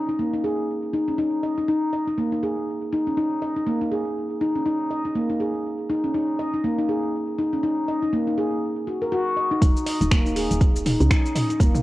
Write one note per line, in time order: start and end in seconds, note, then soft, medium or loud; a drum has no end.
0.09 0.18 D#4 medium
0.19 0.27 A#3 medium
0.34 0.43 D#4 medium
0.44 0.57 G#4 medium
0.94 1.08 D#4 medium
1.08 1.14 C#4 medium
1.18 1.32 D#4 medium
1.43 1.56 D#5 medium
1.58 1.67 D#4 medium
1.68 1.82 D#4 medium
1.93 2.06 D#5 medium
2.08 2.17 D#4 medium
2.18 2.26 A#3 medium
2.32 2.42 D#4 medium
2.43 2.56 G#4 medium
2.93 3.06 D#4 medium
3.07 3.12 C#4 medium
3.17 3.31 D#4 medium
3.42 3.55 D#5 medium
3.56 3.66 D#4 medium
3.67 3.74 A#3 loud
3.81 3.90 D#4 medium
3.91 4.04 G#4 medium
4.41 4.55 D#4 medium
4.55 4.61 C#4 medium
4.66 4.80 D#4 medium
4.91 5.04 D#5 medium
5.05 5.14 D#4 medium
5.15 5.23 A#3 loud
5.30 5.39 D#4 medium
5.40 5.53 G#4 medium
5.90 6.03 D#4 medium
6.04 6.10 C#4 medium
6.14 6.28 D#4 medium
6.39 6.52 D#5 medium
6.54 6.63 D#4 medium
6.64 6.72 A#3 loud
6.78 6.88 D#4 medium
6.89 7.02 G#4 medium
7.38 7.52 D#4 medium
7.53 7.59 C#4 medium
7.63 7.77 D#4 loud
7.88 8.01 D#5 medium
8.02 8.12 D#4 medium
8.13 8.21 A#3 loud
8.27 8.37 D#4 medium
8.38 8.51 G#4 medium
8.87 9.01 F#4 medium
9.02 9.12 A#4 medium
9.12 9.26 F#4 loud
9.37 9.50 D#5 medium
9.51 9.60 D#4 medium
9.62 9.74 D#1 loud
9.62 9.75 D#4 loud
9.62 kick loud
9.62 closed hi-hat medium
9.62 cabasa medium
9.77 cabasa medium
9.86 9.99 D#5 medium
9.86 open hi-hat loud
9.86 cabasa medium
10.01 10.47 D#1 medium
10.01 10.10 D#4 medium
10.01 closed hi-hat soft
10.01 cabasa medium
10.11 10.19 A#3 loud
10.11 finger snap loud
10.11 kick loud
10.11 closed hi-hat medium
10.11 cabasa medium
10.26 10.35 D#4 medium
10.26 cabasa medium
10.36 10.49 G#4 medium
10.36 open hi-hat medium
10.36 cabasa medium
10.51 10.97 D#1 medium
10.51 closed hi-hat soft
10.51 cabasa medium
10.61 kick loud
10.61 closed hi-hat medium
10.61 cabasa medium
10.76 cabasa medium
10.86 10.99 D#4 medium
10.86 mid tom medium
10.86 open hi-hat loud
10.86 cabasa medium
11.00 11.09 C#2 loud
11.00 11.06 C#4 medium
11.00 closed hi-hat soft
11.00 cabasa medium
11.10 11.24 D#4 loud
11.10 finger snap loud
11.10 kick loud
11.10 closed hi-hat medium
11.10 cabasa medium
11.26 cabasa medium
11.35 11.48 D#5 medium
11.35 mid tom medium
11.35 open hi-hat medium
11.35 cabasa medium
11.50 11.59 D#4 medium
11.50 closed hi-hat soft
11.50 cabasa medium
11.60 11.72 D#1 loud
11.60 11.68 A#3 loud
11.60 kick loud
11.60 closed hi-hat medium
11.60 cabasa loud
11.74 11.82 D#4 medium
11.74 mid tom medium
11.74 cabasa medium